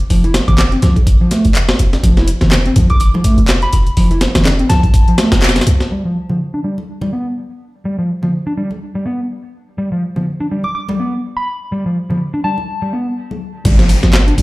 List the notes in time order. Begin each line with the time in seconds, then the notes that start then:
0.10 F1 F3, closed hi-hat, open hi-hat
0.24 E4, closed hi-hat
0.34 snare, closed hi-hat
0.48 F1 E3 D6, kick, closed hi-hat, low conga
0.58 D6, snare, clap, closed hi-hat
0.72 C4, closed hi-hat
0.82 C2 F3, snare, closed hi-hat
0.96 kick, closed hi-hat, high conga
1.07 F1, kick, closed hi-hat
1.21 F3
1.31 A3, snare, closed hi-hat
1.45 F1, closed hi-hat
1.55 clap, closed hi-hat
1.69 snare, closed hi-hat
1.79 F1, closed hi-hat
1.93 snare, closed hi-hat
2.03 F1 F3, kick, closed hi-hat
2.17 E4, snare, closed hi-hat
2.28 closed hi-hat
2.41 F1 E3, snare, closed hi-hat, low conga
2.52 snare, clap, closed hi-hat
2.66 C4, closed hi-hat
2.76 C2 F3, kick, closed hi-hat
2.90 D6, kick, closed hi-hat, high conga
3.00 F1 D6, closed hi-hat
3.14 F3, muted conga, high conga
3.24 A3, kick, closed hi-hat
3.38 F1, closed hi-hat
3.48 snare, clap, closed hi-hat
3.62 B5, closed hi-hat
3.73 F1, closed hi-hat
3.87 closed hi-hat
3.97 F1 F3, closed hi-hat, open hi-hat
4.11 E4, closed hi-hat
4.21 snare, closed hi-hat
4.35 F1 E3, snare, closed hi-hat, low conga
4.45 snare, clap, closed hi-hat
4.59 C4, closed hi-hat
4.69 C2 F3 A5, snare, closed hi-hat
4.83 kick, closed hi-hat, high conga
4.94 F1, kick, closed hi-hat
5.08 F3, closed hi-hat
5.18 A3, snare, closed hi-hat
5.32 F1, snare, closed hi-hat, high conga
5.42 snare, clap, closed hi-hat
5.49 snare, closed hi-hat
5.56 snare, closed hi-hat, muted conga, high conga
5.61 snare, closed hi-hat
5.67 C2, closed hi-hat
5.80 snare, closed hi-hat
5.92 G3
6.05 F3
6.30 F3, low conga
6.54 D4
6.64 G3
6.78 high conga
7.01 G3, muted conga, high conga
7.13 B3
7.85 G3
7.99 F3
8.23 F3, low conga
8.47 D4
8.57 G3
8.71 high conga
8.95 G3
9.06 B3
9.78 G3
9.92 F3
10.16 F3, low conga
10.40 D4
10.51 G3
10.64 D6, high conga
10.75 D6
10.89 G3, muted conga, high conga
10.99 B3
11.37 B5
11.72 G3
11.86 F3
12.10 F3, low conga
12.34 D4
12.44 G3 A5
12.58 high conga
12.82 G3
12.93 B3
13.31 high conga
13.65 G1 G3, kick, closed hi-hat, downlifter, low conga
13.79 F3, snare, closed hi-hat
13.89 closed hi-hat, open hi-hat
14.03 G1 F3, snare, closed hi-hat
14.13 snare, clap, closed hi-hat
14.27 D4, closed hi-hat
14.38 D1 G3, kick, closed hi-hat, open hi-hat